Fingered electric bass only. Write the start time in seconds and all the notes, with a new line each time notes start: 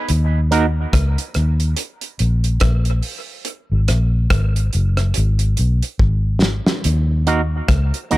0.10 D#2
0.94 C#2
1.36 D#2
2.20 A#1
2.62 A#1
3.72 G#1
3.89 A#1
4.31 G#1
4.75 F#1
5.18 G#1
5.59 B1
6.00 G#1
6.85 D#2
7.69 C#2
8.13 D#2